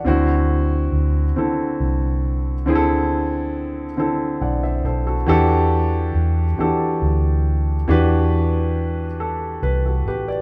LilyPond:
<<
  \new Staff \with { instrumentName = "Grand piano" } { \time 6/8 \key e \minor \tempo 4. = 46 << { <d'' fis''>16 r2 r8. | r2 <d'' fis''>16 <c'' e''>16 <a' c''>16 <fis' a'>16~ | <fis' a'>16 r2 r8. | r2 r16 <fis' a'>16 <g' b'>16 <b' d''>16 | } \\ { <d c' e' fis'>4. <d c' e' a'>4. | <d c' e' gis' a'>4. <d c' e' a'>4. | <e d' fis' g' a'>4. <e d' fis' g' a'>4. | <e d' fis' g' b'>4. a'8 b'4 | } >> }
  \new Staff \with { instrumentName = "Fingered electric bass" } { \clef bass \time 6/8 \key e \minor d,4 d,8 r8 c,4 | d,2 b,,8 b,,8 | e,4 e,8 r8 d,4 | e,2 c,8 a,,8 | }
>>